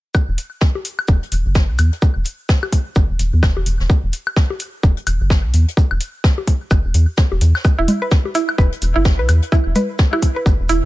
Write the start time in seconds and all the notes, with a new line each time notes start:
0.14 kick, high woodblock, shaker
0.28 E1
0.38 open hi-hat, shaker
0.61 kick, snare, shaker
0.75 low bongo
0.85 open hi-hat, shaker
0.99 high woodblock
1.08 E1, kick, shaker
1.23 closed hi-hat
1.32 E1, open hi-hat, shaker
1.46 G1
1.55 kick, snare, shaker
1.69 B1
1.78 E2, open hi-hat, high woodblock, shaker
1.93 closed hi-hat
2.02 kick, shaker
2.16 E1
2.25 open hi-hat, shaker
2.49 kick, snare, shaker
2.63 low bongo, high woodblock
2.72 kick, open hi-hat, shaker
2.95 G1, kick, shaker
3.10 E1
3.19 E1, open hi-hat, shaker
3.33 E2
3.43 E1, kick, snare, high woodblock, shaker
3.57 E1, low bongo
3.66 E1, open hi-hat, shaker
3.80 E1, snare
3.90 kick, shaker
4.03 E1
4.13 open hi-hat, shaker
4.27 high woodblock
4.36 kick, snare, shaker
4.50 low bongo
4.59 open hi-hat, shaker
4.83 E1, kick, shaker
4.97 closed hi-hat
5.07 E1, open hi-hat, high woodblock, shaker
5.21 G1
5.30 kick, snare, shaker
5.44 B1
5.54 E2, open hi-hat, shaker
5.68 closed hi-hat
5.77 kick, shaker
5.91 E1, high woodblock
6.00 open hi-hat, shaker
6.24 kick, snare, shaker
6.38 low bongo
6.47 kick, open hi-hat, shaker
6.71 G1, kick, high woodblock, shaker
6.85 E1
6.94 E2, open hi-hat, shaker
7.17 kick, snare, shaker
7.32 E1, low bongo
7.41 E2, open hi-hat, shaker
7.55 snare, high woodblock
7.64 kick, high woodblock, shaker
7.78 E1 E4
7.88 open hi-hat, low conga, shaker
8.02 B4
8.11 kick, snare, shaker
8.25 low bongo
8.35 E4, open hi-hat, shaker
8.49 high woodblock
8.58 E1 B4, kick, shaker
8.72 closed hi-hat
8.82 E1, open hi-hat, shaker
8.96 G1 E4
9.05 kick, snare, shaker
9.19 B1 B4
9.29 E2, open hi-hat, high woodblock, shaker
9.42 closed hi-hat
9.52 E4, kick, shaker
9.66 E1
9.75 B4, open hi-hat, low conga, shaker
9.99 kick, snare, shaker
10.13 E4, low bongo, high woodblock
10.22 kick, open hi-hat, shaker
10.36 B4
10.46 G1, kick, shaker
10.60 E1
10.69 E1 E4, open hi-hat, shaker